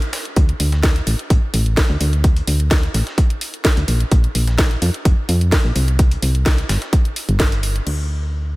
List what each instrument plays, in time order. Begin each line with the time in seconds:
0.02 closed hi-hat
0.13 snare, closed hi-hat, open hi-hat
0.25 closed hi-hat
0.36 fm bass D2, kick, closed hi-hat
0.49 closed hi-hat
0.60 fm bass D2, closed hi-hat, open hi-hat
0.72 snare, closed hi-hat
0.83 kick, snare, closed hi-hat
0.96 closed hi-hat
1.07 fm bass A1, closed hi-hat, open hi-hat
1.19 closed hi-hat
1.30 fm bass A1, kick, closed hi-hat
1.54 fm bass A1, closed hi-hat, open hi-hat
1.66 closed hi-hat
1.77 kick, snare, closed hi-hat, open hi-hat
1.90 fm bass D2
2.01 fm bass D2, closed hi-hat, open hi-hat
2.13 closed hi-hat
2.24 kick, closed hi-hat
2.36 closed hi-hat
2.47 fm bass D2, closed hi-hat, open hi-hat
2.60 closed hi-hat
2.71 kick, snare, closed hi-hat
2.83 closed hi-hat
2.94 fm bass A1, snare, closed hi-hat, open hi-hat
3.07 snare, closed hi-hat
3.18 kick, closed hi-hat
3.30 closed hi-hat
3.41 closed hi-hat, open hi-hat
3.54 closed hi-hat
3.65 kick, snare, closed hi-hat
3.77 fm bass D2, closed hi-hat
3.88 fm bass A#1, closed hi-hat, open hi-hat
4.00 closed hi-hat
4.12 fm bass A#1, kick, closed hi-hat
4.24 closed hi-hat
4.35 fm bass A#1, closed hi-hat, open hi-hat
4.47 snare, closed hi-hat
4.58 kick, snare, closed hi-hat
4.71 closed hi-hat
4.82 fm bass F2, closed hi-hat, open hi-hat
4.94 closed hi-hat
5.05 fm bass F1, kick, closed hi-hat
5.29 fm bass F2, closed hi-hat, open hi-hat
5.41 closed hi-hat
5.52 kick, snare, closed hi-hat, open hi-hat
5.65 fm bass A#1
5.76 fm bass C2, closed hi-hat, open hi-hat
5.88 closed hi-hat
5.99 kick, closed hi-hat
6.11 closed hi-hat
6.22 fm bass C2, closed hi-hat, open hi-hat
6.35 closed hi-hat
6.46 kick, snare, closed hi-hat
6.58 closed hi-hat
6.69 fm bass G1, snare, closed hi-hat, open hi-hat
6.82 snare, closed hi-hat
6.93 kick, closed hi-hat
7.05 closed hi-hat
7.16 closed hi-hat, open hi-hat
7.29 fm bass G1, closed hi-hat
7.40 kick, snare, closed hi-hat
7.52 closed hi-hat
7.63 closed hi-hat, open hi-hat
7.76 closed hi-hat
7.87 fm bass D2, crash